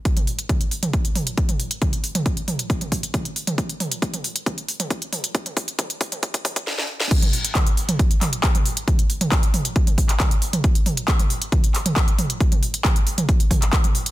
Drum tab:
CC |----------------|----------------|----------------|----------------|
HH |xxoxxxoxxxoxxxox|xxoxxxoxxxoxxxox|xxoxxxoxxxoxxxox|xxoxxxoxxxox----|
CP |----------------|----------------|----------------|----------------|
SD |----------------|----------------|----------------|------------oo-o|
T2 |-o--o--o--o--o--|o--o--o--o--o--o|--o--o--o--o--o-|-o--o--o--o-----|
BD |o---o---o---o---|o---o---o-o-o---|o---o---o---o---|o-o-o-o-oooo----|

CC |x---------------|----------------|----------------|----------------|
HH |xxoxxxoxxxoxxxox|xxoxxxoxxxoxxxox|xxoxxxoxxxoxxxox|xxoxxxoxxxoxxxox|
CP |----x-----x-x---|----x------xx---|----x-----x-x---|----x------xx---|
SD |----------------|----------------|----------------|----------------|
T2 |-o--o--o--o--o--|o--o--o--o--o--o|--o--o--o--o--o-|-o--o--o--o--o--|
BD |o---o---o---o---|o---o---o-o-o---|o---o---o---o---|o---o---o-o-o---|